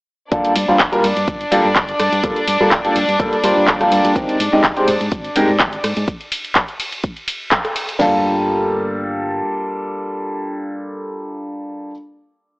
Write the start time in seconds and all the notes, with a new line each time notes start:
0.31 G1 G3 A#3 D4 F4 A4 D5, kick, closed hi-hat
0.45 closed hi-hat
0.56 G2, open hi-hat, ride
0.68 G2 G3 A#3 D4 F4 C5
0.79 G1, kick, clap, closed hi-hat
0.92 G3 A#3 D4 F4 A#4, closed hi-hat
1.04 G2, open hi-hat, ride
1.17 G2, closed hi-hat
1.28 G1, kick, closed hi-hat
1.41 closed hi-hat
1.51 G2 G3 A#3 D4 F4 A4, open hi-hat, ride
1.65 G2
1.76 G1, kick, clap, closed hi-hat
1.89 closed hi-hat
2.00 G2, cross-stick, open hi-hat, ride
2.12 G2, closed hi-hat
2.23 G1 G3 A#3 D4 F4 A4, kick, closed hi-hat
2.36 closed hi-hat
2.48 G2, open hi-hat, ride
2.60 G2 G3 A#3 D4 F4 A4
2.71 G1, kick, clap, closed hi-hat
2.84 G3 A#3 D4 F4 A4, closed hi-hat
2.96 G2, open hi-hat, ride
3.08 G2, closed hi-hat
3.19 G1 G3 A#3 D4 F4 A4, kick, closed hi-hat
3.32 muted fingered electric bass stroke, closed hi-hat
3.44 G2 G3 A#3 D4 F4 C5, open hi-hat, ride
3.56 G2
3.67 G1, kick, cross-stick, clap, closed hi-hat
3.80 G3 A#3 D4 F4 A4, cross-stick, closed hi-hat
3.92 G2, open hi-hat, ride
4.05 G2, closed hi-hat
4.15 G#3 C4 D#4 G4 A#4, kick, closed hi-hat
4.29 closed hi-hat
4.40 G#2, open hi-hat, ride
4.52 G#2 G#3 C4 D#4 G4 D#5
4.64 G#1, kick, clap, closed hi-hat
4.76 G#3 C4 D#4 G4 C5, closed hi-hat
4.88 G#2, open hi-hat, ride
5.01 G#2, closed hi-hat
5.12 G#1, kick, closed hi-hat
5.24 closed hi-hat
5.36 G#2 G#3 C4 D#4 G4 A#4, open hi-hat, ride
5.49 G#2
5.59 G#1, kick, clap, closed hi-hat
5.73 closed hi-hat
5.84 G#2, cross-stick, open hi-hat, ride
5.97 G#2, closed hi-hat
6.08 kick, closed hi-hat
6.21 closed hi-hat
6.32 open hi-hat, ride
6.44 closed hi-hat
6.55 kick, clap, closed hi-hat
6.68 closed hi-hat
6.80 open hi-hat, ride
6.92 closed hi-hat
7.04 kick, closed hi-hat
7.16 closed hi-hat
7.28 open hi-hat, ride
7.51 kick, cross-stick, clap, closed hi-hat
7.65 cross-stick, closed hi-hat
7.76 open hi-hat, ride
7.89 closed hi-hat
7.99 G1 G3 A#3 D4 F4 A4, snare, floor tom, crash